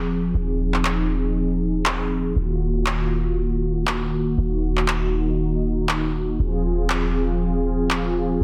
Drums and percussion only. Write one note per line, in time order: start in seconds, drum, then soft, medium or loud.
0.74 clap soft
0.85 clap medium
1.86 clap medium
2.86 clap medium
3.87 clap medium
4.77 clap soft
4.88 clap loud
5.89 clap medium
6.90 clap loud
7.90 clap medium